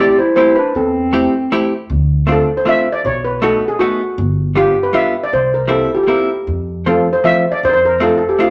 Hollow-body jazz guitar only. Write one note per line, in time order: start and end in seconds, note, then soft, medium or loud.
0.00 0.18 A3 medium
0.00 0.18 C4 medium
0.00 0.19 E4 soft
0.00 0.19 G4 medium
0.36 0.56 A3 medium
0.36 0.57 C4 medium
0.36 0.57 E4 soft
0.36 0.57 G4 medium
1.13 1.33 A3 soft
1.13 1.34 C4 soft
1.13 1.33 E4 soft
1.13 1.33 G4 medium
1.52 1.72 A3 medium
1.52 1.72 C4 medium
1.52 1.72 E4 medium
1.52 1.73 G4 medium
2.27 2.48 A3 soft
2.27 2.49 C4 soft
2.27 2.49 D4 soft
2.27 2.49 F4 soft
2.65 2.86 A3 medium
2.65 2.87 C4 soft
2.65 2.87 D4 soft
2.65 2.87 F4 soft
3.42 3.62 A3 medium
3.42 3.63 B3 soft
3.42 3.63 D#4 medium
3.42 3.63 F#4 medium
3.80 4.01 A3 medium
3.80 4.01 B3 soft
3.80 4.01 D#4 soft
3.80 4.01 F#4 medium
4.55 4.76 G3 soft
4.55 4.76 B3 soft
4.55 4.76 D4 soft
4.55 4.77 F4 medium
4.93 5.14 G3 medium
4.93 5.14 B3 soft
4.93 5.15 D4 medium
4.93 5.14 F4 medium
5.68 5.89 G3 soft
5.68 5.89 A#3 soft
5.68 5.90 C4 soft
5.68 5.89 E4 medium
6.07 6.29 G3 soft
6.07 6.29 A#3 soft
6.07 6.29 C4 soft
6.07 6.29 E4 medium
6.86 7.07 F3 soft
6.86 7.06 A3 soft
6.86 7.07 C4 soft
6.86 7.07 F4 soft
7.24 7.44 F3 medium
7.24 7.45 A3 soft
7.24 7.44 C4 soft
7.24 7.44 F4 medium
8.00 8.20 A3 medium
8.00 8.20 C4 soft
8.00 8.20 D4 soft
8.00 8.21 F4 medium
8.39 8.50 A3 soft
8.39 8.50 C4 soft
8.39 8.50 D4 medium
8.39 8.50 F4 medium